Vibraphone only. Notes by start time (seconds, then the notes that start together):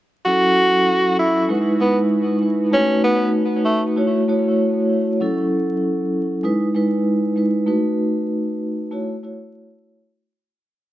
0.25 F#3 C#4 E4 A4
1.48 G#3 D#4 E4 B4
1.80 G#3 D#4 E4 B4
2.41 G#3 D#4 E4 B4
2.71 A3 D#4 F#4 B4
3.96 A3 E4 F#4 C#5
4.28 A3 E4 F#4 C#5
5.20 F#3 C#4 E4 A4
6.43 G#3 D#4 E4 B4
6.75 G#3 D#4 E4 B4
7.36 G#3 D#4 E4 B4
7.66 A3 D#4 F#4 B4
8.91 A3 E4 F#4 C#5
9.23 A3 E4 F#4 C#5